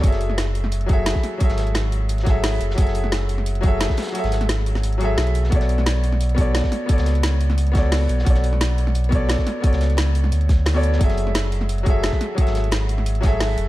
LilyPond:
<<
  \new Staff \with { instrumentName = "Grand piano" } { \time 4/4 \key b \dorian \tempo 4 = 175 <fis fis' gis' a' e''>2~ <fis fis' gis' a' e''>8 <fis fis' gis' a' e''>4. | <fis fis' gis' a' e''>2~ <fis fis' gis' a' e''>8 <fis fis' gis' a' e''>4. | <fis fis' gis' a' e''>2~ <fis fis' gis' a' e''>8 <fis fis' gis' a' e''>4. | <fis fis' gis' a' e''>2~ <fis fis' gis' a' e''>8 <fis fis' gis' a' e''>4. |
<b fis' a' cis'' d''>2~ <b fis' a' cis'' d''>8 <b fis' a' cis'' d''>4. | <b fis' a' cis'' d''>2~ <b fis' a' cis'' d''>8 <b fis' a' cis'' d''>4. | <b fis' a' cis'' d''>2~ <b fis' a' cis'' d''>8 <b fis' a' cis'' d''>4. | <b fis' a' cis'' d''>2~ <b fis' a' cis'' d''>8 r8. <b fis' a' cis'' d''>8. |
<fis fis' gis' a' e''>2~ <fis fis' gis' a' e''>8 <fis fis' gis' a' e''>4. | <fis fis' gis' a' e''>2~ <fis fis' gis' a' e''>8 <fis fis' gis' a' e''>4. | }
  \new Staff \with { instrumentName = "Sub bass" } { \clef bass \time 4/4 \key b \dorian fis,,2.~ fis,,16 r8. | r16 gis,,2.~ gis,,16 fis,,8 | fis,,2.~ fis,,16 r8. | r16 gis,,2~ gis,,8. b,,4 |
b,,2.~ b,,16 r8. | r16 cis,2.~ cis,16 b,,8 | b,,2.~ b,,16 r8. | r16 cis,4.~ cis,16 d,2 |
fis,,2.~ fis,,16 r8. | r16 gis,,2.~ gis,,16 fis,,8 | }
  \new DrumStaff \with { instrumentName = "Drums" } \drummode { \time 4/4 <hh bd>16 <hh sn>16 hh16 sn16 <hh sn>8 hh16 sn16 hh16 hh16 <hh bd>8 <hh sn>16 <bd sn>16 <hh hho sn>8 | <hh bd>16 <hh sn>16 <hh sn>16 hh16 <hh sn>8 hh8 hh16 <hh sn>16 <hh bd sn>8 <hh hho sn>8 <hh hho>16 sn16 | <hh bd>16 <hh sn>16 hh16 sn16 <hh sn>8 hh16 sn16 hh16 hh16 <hh bd>8 <hh sn>16 <bd sn>16 <hh hho sn>32 <hh sn>32 <hh sn>16 | hh16 <hh sn>16 <hh sn>16 <hh sn>16 <hh sn>8 hh16 sn16 hh16 hh16 hh8 <hh sn>16 hh16 <hh hho>16 sn16 |
<hh bd>16 <hh sn>16 hh16 sn16 <hh sn>8 hh16 sn16 hh16 hh16 <hh bd>8 <hh sn>16 <bd sn>16 <hh hho sn>8 | <hh bd>16 <hh sn>16 <hh sn>16 hh16 <hh sn>8 hh16 sn16 hh16 hh16 <hh bd sn>8 <hh hho sn>8 <hh hho>16 sn16 | <hh bd>16 <hh sn>16 hh16 sn16 <hh sn>8 hh16 sn16 hh16 hh16 <hh bd>8 <hh sn>16 <bd sn>16 <hh hho sn>8 | <hh bd>16 <hh sn>16 <hh sn>16 hh16 <hh sn>8 hh16 sn16 hh16 hh16 <hh bd sn>8 <hh hho sn>8 <hh hho>16 sn16 |
<hh bd>16 <hh sn>16 hh16 sn16 <hh sn>8 hh16 sn16 hh16 hh16 <hh bd>8 <hh sn>16 <bd sn>16 <hh hho sn>8 | <hh bd>16 <hh sn>16 <hh sn>16 hh16 <hh sn>8 hh16 sn16 hh16 hh16 <hh bd sn>8 <hh hho sn>8 <hh hho>8 | }
>>